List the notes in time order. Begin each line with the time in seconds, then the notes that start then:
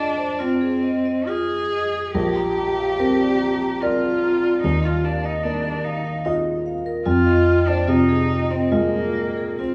Already playing: G#3 D4 F4 F5
0.17 C5
0.39 C4 F4
0.61 G#4
0.83 D#5
1.05 D#5
1.27 F4 G#4
1.71 D#5
1.93 G#4
2.14 A#1 G4 A#4
2.36 A#5
2.57 A#5
2.79 F5
2.99 C4 A#4
3.20 D5
3.41 A#5
3.62 A#5
3.82 F4 A#4 D5
4.23 A#5
4.43 D5
4.63 D#2 D#4
4.84 F4 F5
5.04 D4 F5
5.24 D#4 D#5
5.43 A#3 D4 D#4
5.65 A#4
5.84 D#4 F5
6.05 F5
6.25 D#4 F4 D#5
6.66 F5
6.86 A#4
7.06 F2 F4
7.26 D#5
7.46 D#5
7.67 D4 C5
7.88 C3 D#4 F4
8.09 G#4
8.30 D#5
8.51 C4 D#5
8.71 G#3 A#3 F4 D#5
9.15 D#5
9.37 G#4
9.59 C4 F4